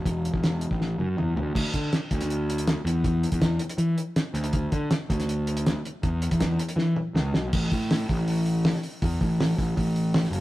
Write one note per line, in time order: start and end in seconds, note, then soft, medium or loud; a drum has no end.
0.05 0.28 E1 loud
0.05 kick loud
0.05 closed hi-hat medium
0.25 closed hi-hat medium
0.34 0.65 E1 medium
0.34 kick medium
0.43 snare medium
0.43 closed hi-hat medium
0.61 closed hi-hat medium
0.71 0.94 A1 medium
0.71 kick medium
0.81 snare soft
0.98 1.15 F#2 medium
0.98 high tom medium
1.17 1.34 E2 medium
1.17 mid tom medium
1.35 1.52 D2 medium
1.35 floor tom medium
1.55 1.62 D2 loud
1.55 kick loud
1.55 crash loud
1.74 1.89 D3 medium
1.74 kick medium
1.74 closed hi-hat medium
1.93 snare loud
1.93 closed hi-hat medium
2.11 2.74 D2 medium
2.11 kick medium
2.11 closed hi-hat medium
2.21 snare soft
2.21 closed hi-hat medium
2.30 closed hi-hat medium
2.50 closed hi-hat medium
2.58 closed hi-hat medium
2.67 snare loud
2.67 closed hi-hat medium
2.85 3.24 E2 loud
2.85 closed hi-hat medium
3.04 kick loud
3.04 closed hi-hat medium
3.23 closed hi-hat medium
3.32 3.40 E2 medium
3.32 kick medium
3.32 closed hi-hat medium
3.41 3.57 E2 medium
3.41 kick medium
3.41 snare loud
3.41 closed hi-hat medium
3.59 closed hi-hat medium
3.69 closed hi-hat medium
3.78 3.94 E3 medium
3.78 closed hi-hat medium
3.98 closed hi-hat medium
4.16 snare loud
4.16 closed hi-hat medium
4.34 4.66 D2 loud
4.34 closed hi-hat medium
4.44 closed hi-hat medium
4.53 kick loud
4.53 closed hi-hat medium
4.72 4.88 D3 medium
4.72 kick medium
4.72 closed hi-hat medium
4.91 snare loud
4.91 closed hi-hat medium
5.10 5.73 D2 medium
5.10 kick medium
5.10 closed hi-hat medium
5.20 snare soft
5.20 closed hi-hat medium
5.29 closed hi-hat medium
5.47 closed hi-hat medium
5.57 closed hi-hat medium
5.66 snare loud
5.66 closed hi-hat medium
5.85 closed hi-hat medium
6.03 6.27 E2 loud
6.03 kick loud
6.03 closed hi-hat medium
6.22 closed hi-hat medium
6.31 6.39 E2 medium
6.31 kick medium
6.31 closed hi-hat medium
6.40 6.56 E2 medium
6.40 kick medium
6.40 snare loud
6.40 closed hi-hat medium
6.59 closed hi-hat medium
6.69 closed hi-hat medium
6.76 6.93 E3 loud
6.76 snare medium
6.96 mid tom medium
7.14 7.32 C#2 medium
7.14 snare medium
7.34 7.51 B1 medium
7.34 snare loud
7.53 7.69 A1 loud
7.53 kick loud
7.53 crash loud
7.71 8.03 A2 loud
7.71 kick loud
7.71 open hi-hat medium
7.91 snare loud
7.91 open hi-hat medium
8.09 8.72 A1 medium
8.09 kick loud
8.09 open hi-hat medium
8.28 open hi-hat medium
8.46 open hi-hat medium
8.65 snare loud
8.65 open hi-hat medium
8.75 snare soft
8.83 open hi-hat medium
9.02 9.18 E2 loud
9.02 kick loud
9.02 open hi-hat medium
9.21 9.52 A1 loud
9.21 kick loud
9.21 open hi-hat medium
9.40 snare loud
9.40 open hi-hat medium
9.58 9.74 A1 medium
9.58 kick medium
9.58 open hi-hat medium
9.77 10.24 A1 loud
9.77 kick medium
9.77 open hi-hat medium
9.96 open hi-hat medium
10.14 snare loud
10.14 open hi-hat medium
10.25 snare soft
10.30 10.40 F#1 loud
10.30 open hi-hat medium